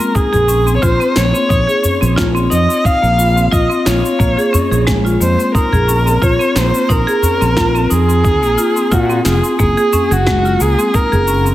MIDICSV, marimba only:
0, 0, Header, 1, 2, 480
1, 0, Start_track
1, 0, Key_signature, -5, "minor"
1, 0, Tempo, 674157
1, 1070, Time_signature, 4, 2, 24, 8
1, 8221, End_track
2, 0, Start_track
2, 0, Title_t, "Marimba"
2, 0, Program_c, 0, 12
2, 0, Note_on_c, 0, 60, 73
2, 102, Note_off_c, 0, 60, 0
2, 105, Note_on_c, 0, 63, 79
2, 224, Note_off_c, 0, 63, 0
2, 233, Note_on_c, 0, 68, 85
2, 341, Note_off_c, 0, 68, 0
2, 344, Note_on_c, 0, 61, 68
2, 421, Note_off_c, 0, 61, 0
2, 474, Note_on_c, 0, 60, 69
2, 576, Note_off_c, 0, 60, 0
2, 585, Note_on_c, 0, 65, 98
2, 661, Note_off_c, 0, 65, 0
2, 711, Note_on_c, 0, 60, 90
2, 820, Note_off_c, 0, 60, 0
2, 823, Note_on_c, 0, 58, 71
2, 943, Note_off_c, 0, 58, 0
2, 954, Note_on_c, 0, 60, 67
2, 1062, Note_off_c, 0, 60, 0
2, 1063, Note_on_c, 0, 63, 82
2, 1183, Note_off_c, 0, 63, 0
2, 1191, Note_on_c, 0, 68, 86
2, 1300, Note_off_c, 0, 68, 0
2, 1303, Note_on_c, 0, 61, 73
2, 1380, Note_off_c, 0, 61, 0
2, 1432, Note_on_c, 0, 60, 71
2, 1535, Note_off_c, 0, 60, 0
2, 1541, Note_on_c, 0, 65, 100
2, 1619, Note_off_c, 0, 65, 0
2, 1671, Note_on_c, 0, 60, 95
2, 1780, Note_off_c, 0, 60, 0
2, 1781, Note_on_c, 0, 63, 75
2, 1902, Note_off_c, 0, 63, 0
2, 1914, Note_on_c, 0, 60, 67
2, 2021, Note_off_c, 0, 60, 0
2, 2023, Note_on_c, 0, 63, 81
2, 2143, Note_off_c, 0, 63, 0
2, 2152, Note_on_c, 0, 58, 69
2, 2261, Note_off_c, 0, 58, 0
2, 2264, Note_on_c, 0, 65, 71
2, 2390, Note_off_c, 0, 65, 0
2, 2394, Note_on_c, 0, 60, 68
2, 2496, Note_off_c, 0, 60, 0
2, 2504, Note_on_c, 0, 65, 103
2, 2581, Note_off_c, 0, 65, 0
2, 2634, Note_on_c, 0, 60, 85
2, 2741, Note_off_c, 0, 60, 0
2, 2744, Note_on_c, 0, 65, 72
2, 2864, Note_off_c, 0, 65, 0
2, 2874, Note_on_c, 0, 60, 67
2, 2982, Note_off_c, 0, 60, 0
2, 2984, Note_on_c, 0, 58, 87
2, 3103, Note_off_c, 0, 58, 0
2, 3114, Note_on_c, 0, 68, 98
2, 3222, Note_off_c, 0, 68, 0
2, 3225, Note_on_c, 0, 61, 98
2, 3350, Note_off_c, 0, 61, 0
2, 3356, Note_on_c, 0, 68, 73
2, 3463, Note_off_c, 0, 68, 0
2, 3465, Note_on_c, 0, 56, 101
2, 3541, Note_off_c, 0, 56, 0
2, 3594, Note_on_c, 0, 65, 75
2, 3702, Note_off_c, 0, 65, 0
2, 3706, Note_on_c, 0, 58, 70
2, 3824, Note_off_c, 0, 58, 0
2, 3837, Note_on_c, 0, 60, 68
2, 3943, Note_off_c, 0, 60, 0
2, 3950, Note_on_c, 0, 63, 79
2, 4066, Note_off_c, 0, 63, 0
2, 4077, Note_on_c, 0, 68, 95
2, 4183, Note_off_c, 0, 68, 0
2, 4186, Note_on_c, 0, 61, 75
2, 4262, Note_off_c, 0, 61, 0
2, 4315, Note_on_c, 0, 60, 66
2, 4417, Note_off_c, 0, 60, 0
2, 4427, Note_on_c, 0, 65, 101
2, 4502, Note_off_c, 0, 65, 0
2, 4553, Note_on_c, 0, 60, 91
2, 4661, Note_off_c, 0, 60, 0
2, 4667, Note_on_c, 0, 58, 70
2, 4785, Note_off_c, 0, 58, 0
2, 4797, Note_on_c, 0, 60, 73
2, 4903, Note_off_c, 0, 60, 0
2, 4906, Note_on_c, 0, 63, 85
2, 5024, Note_off_c, 0, 63, 0
2, 5035, Note_on_c, 0, 68, 99
2, 5142, Note_off_c, 0, 68, 0
2, 5146, Note_on_c, 0, 61, 72
2, 5222, Note_off_c, 0, 61, 0
2, 5277, Note_on_c, 0, 60, 73
2, 5378, Note_off_c, 0, 60, 0
2, 5388, Note_on_c, 0, 65, 100
2, 5463, Note_off_c, 0, 65, 0
2, 5517, Note_on_c, 0, 60, 90
2, 5623, Note_off_c, 0, 60, 0
2, 5627, Note_on_c, 0, 63, 69
2, 5745, Note_off_c, 0, 63, 0
2, 5757, Note_on_c, 0, 60, 67
2, 5863, Note_off_c, 0, 60, 0
2, 5866, Note_on_c, 0, 63, 79
2, 5984, Note_off_c, 0, 63, 0
2, 5996, Note_on_c, 0, 58, 74
2, 6102, Note_off_c, 0, 58, 0
2, 6107, Note_on_c, 0, 65, 72
2, 6231, Note_off_c, 0, 65, 0
2, 6235, Note_on_c, 0, 60, 69
2, 6337, Note_off_c, 0, 60, 0
2, 6348, Note_on_c, 0, 65, 99
2, 6423, Note_off_c, 0, 65, 0
2, 6475, Note_on_c, 0, 60, 88
2, 6582, Note_off_c, 0, 60, 0
2, 6588, Note_on_c, 0, 65, 68
2, 6705, Note_off_c, 0, 65, 0
2, 6716, Note_on_c, 0, 60, 69
2, 6823, Note_off_c, 0, 60, 0
2, 6828, Note_on_c, 0, 58, 88
2, 6945, Note_off_c, 0, 58, 0
2, 6959, Note_on_c, 0, 68, 94
2, 7064, Note_off_c, 0, 68, 0
2, 7070, Note_on_c, 0, 61, 97
2, 7193, Note_off_c, 0, 61, 0
2, 7200, Note_on_c, 0, 68, 73
2, 7305, Note_off_c, 0, 68, 0
2, 7312, Note_on_c, 0, 56, 102
2, 7385, Note_off_c, 0, 56, 0
2, 7441, Note_on_c, 0, 65, 73
2, 7545, Note_off_c, 0, 65, 0
2, 7550, Note_on_c, 0, 58, 70
2, 7666, Note_off_c, 0, 58, 0
2, 7679, Note_on_c, 0, 60, 74
2, 7784, Note_off_c, 0, 60, 0
2, 7788, Note_on_c, 0, 63, 79
2, 7906, Note_off_c, 0, 63, 0
2, 7919, Note_on_c, 0, 68, 93
2, 8024, Note_off_c, 0, 68, 0
2, 8029, Note_on_c, 0, 61, 71
2, 8103, Note_off_c, 0, 61, 0
2, 8157, Note_on_c, 0, 60, 70
2, 8221, Note_off_c, 0, 60, 0
2, 8221, End_track
0, 0, End_of_file